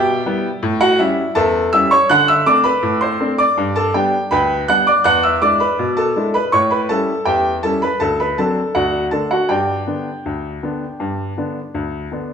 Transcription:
upright piano
Already playing: B2 G4 E5 G5
0.26 G3 B3 E4
0.63 A2
0.81 F#4 F#5
0.99 G3 C#4 E4 E5
1.35 E2 A4 E5 A5
1.73 G3 C#4 E4 E5 E6
1.91 C#5 C#6
2.10 D3 F#5 F#6
2.28 E5 E6
2.46 A3 C4 D4 D5 D6
2.64 B4 B5
2.83 A2
3.01 C5 C6
3.20 A3 C4 D4
3.38 D5 D6
3.57 G2
3.76 A4 A5
3.94 G3 B3 D4 G4 G5
4.31 D2 B4 G5 B5
4.68 G3 B3 D4 F#5 F#6
4.87 D5 D6
5.04 E2 F#5 F#6
5.23 E5 E6
5.42 G#3 D4 E4 D5 D6
5.60 B4 B5
5.79 B2
5.97 A4 A5
6.16 G#3 D4 E4
6.34 B4 B5
6.52 A2 C#5 C#6
6.71 B4 B5
6.89 G3 C#4 E4 A4 A5
7.25 E2 G4 E5 G5
7.63 G3 C#4 E4 A4 A5
7.82 B4 B5
8.00 D2 A4 A5
8.20 B4 B5
8.38 F#3 C4 D4 A4 A5
8.75 D2 F#4 D5 F#5
9.11 D3 A3 D4 A4 A5
9.31 F#4 F#5
9.49 G2 G4 D5 G5
9.87 D3 B3 D4
10.26 D2
10.63 D3 B3 D4
11.00 G2
11.38 D3 B3 D4
11.74 D2
12.12 D3 B3 D4

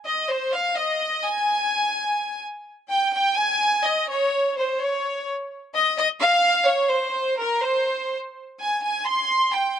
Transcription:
violin section
0.05 D#5
0.29 C5
0.53 F5
0.75 D#5
1.24 G#5
2.89 G5
3.13 G5
3.37 G#5
3.84 D#5
4.09 C#5
4.57 C5
4.80 C#5
5.74 D#5
5.97 D#5
6.19 F5
6.66 C#5
6.89 C5
7.38 A#4
7.62 C5
8.60 G#5
8.82 G#5
9.05 C6
9.52 G5

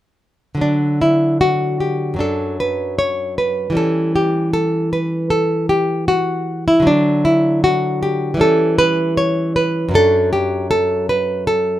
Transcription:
nylon-string guitar
0.55 D3 F#3
0.61 D4
1.02 E4
1.41 F#4
1.80 G4
2.14 F#2 F#3
2.19 D4 A4
2.60 B4
2.99 C#5
3.38 B4
3.70 E3 G3
3.75 C#4 A4
4.16 G4
4.53 A4
4.93 B4
5.30 A4
5.69 G4
6.08 F#4
6.68 E4
6.80 D3 F#3
6.87 D4
7.25 E4
7.64 F#4
8.03 G4
8.34 E3 G3
8.40 C#4 A4
8.79 B4
9.17 C#5
9.56 B4
9.89 F#2 F#3
9.94 D4 A4
10.33 G4
10.71 A4
11.09 B4
11.47 A4

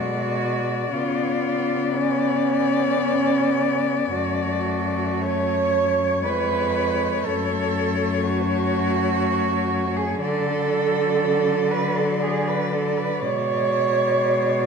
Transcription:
cello
Already playing: B2 G#3 F#4 D5
0.93 C#3 B3 F4
1.97 C#4
4.11 F#2 A3 F#4
5.21 C#5
6.24 F2 G#3 B4
7.24 F#2 A3 A4
8.22 F#4
9.96 G#4
10.21 D3 F#3 A4 D5
11.71 B4
11.96 A4
12.22 G#4
12.48 B4
12.73 A4
12.97 B4
13.22 B2 G#3 C#5

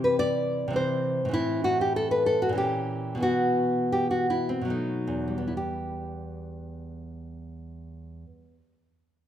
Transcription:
nylon-string guitar
Already playing: C3 E3 C4
0.04 B4
0.19 D5
0.68 C3 E3
0.73 C4 C5
1.25 A2 E3
1.31 C4 E4
1.64 F#4
1.81 G4
1.96 A4
2.11 B4
2.26 A4
2.42 F#4
2.49 A#2 E3
2.55 C#4 G4
3.15 B2 E3
3.20 B3 F#4
3.92 G4
4.11 F#4
4.30 E4
4.49 C4
4.61 B2 F#3
4.68 A3 D#4
5.07 E2
5.28 G3
5.38 B3
5.48 E4
5.57 G4

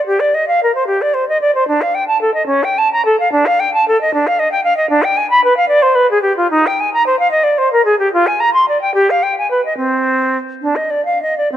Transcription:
flute
0.06 G4
0.20 D5
0.34 D#5
0.48 F5
0.63 A#4
0.75 C5
0.87 G4
1.01 D5
1.14 C5
1.28 D#5
1.41 D5
1.54 C5
1.68 D4
1.81 F5
1.94 G5
2.07 A5
2.21 A4
2.34 D#5
2.46 C#4
2.63 G5
2.78 A5
2.93 A#5
3.05 A4
3.19 F5
3.32 D4
3.46 F5
3.60 G5
3.73 A5
3.88 A4
4.01 D#5
4.14 D4
4.27 F5
4.39 D#5
4.52 G5
4.64 F5
4.77 D#5
4.90 D4
5.03 G5
5.17 G#5
5.30 B5
5.44 B4
5.57 F5
5.68 D5
5.82 C5
5.95 B4
6.11 G#4
6.22 G4
6.37 F4
6.50 D#4
6.66 G5
6.80 G#5
6.93 A#5
7.06 C5
7.19 F5
7.31 D#5
7.43 D5
7.58 C5
7.72 A#4
7.85 G#4
7.99 G4
8.13 F4
8.27 G#5
8.40 A#5
8.53 C6
8.68 D5
8.81 G5
8.94 G4
9.10 F5
9.23 G5
9.38 G#5
9.50 B4
9.65 D#5
9.77 C4
10.62 D4
10.76 D#5
10.90 D5
11.05 F5
11.22 D#5
11.37 D5
11.52 C4

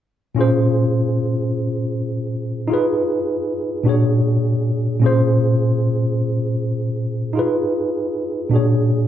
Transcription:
tine electric piano
0.35 A#2 C#4 F4
0.39 G#4 C5
2.68 D#4 F4 G#4
2.73 B4
3.83 A#2 D4 F#4
3.88 G#4 C#5
5.00 A#2 C#4 F4
5.04 G#4 C5
7.33 D#4 F4 G#4
7.39 B4
8.49 A#2 D4 F#4
8.54 G#4 C#5

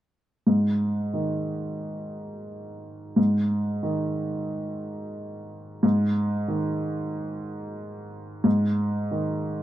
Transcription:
upright piano
0.47 G#2
1.14 D#3
3.16 G#2
3.83 D#3
5.83 G#2
6.48 D#3
8.44 G#2
9.11 D#3

